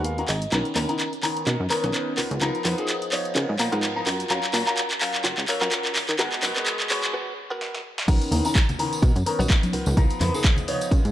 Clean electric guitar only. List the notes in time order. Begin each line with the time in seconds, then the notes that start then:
Already playing: B3 F#4 A#4
0.05 F5
0.29 D#5
0.52 C#4 D#4 A#4
0.76 C#4 D#4 A#4
1.46 C#4 D#4 A#4
1.84 C#4 D#4 B4
2.17 B3 D#4 F4 A#4
2.64 B3 D#4 F4 A#4
3.35 B3 D#4 F4 A#4
3.72 B3 D#4 F4 A#4
4.06 F4 F#4 A#4
4.53 F4 F#4 A#4
5.24 F4 F#4 A#4
5.61 F4 F#4 A#4
6.19 B3 F#4 A#4
6.42 B3 F#4 A#4
7.14 B3 F#4 B4
7.50 B3 F#4 A#4
8.08 B3 C#4 D#4 A#4
8.79 muted clean electric guitar stroke
9.02 B3 C#4 D#4 A#4
9.26 muted clean electric guitar stroke
9.39 B3 C#4 D#4 C#5
9.73 B3 D#4 F4 A#4
10.68 muted clean electric guitar stroke
10.91 B3 D#4 F4 A#4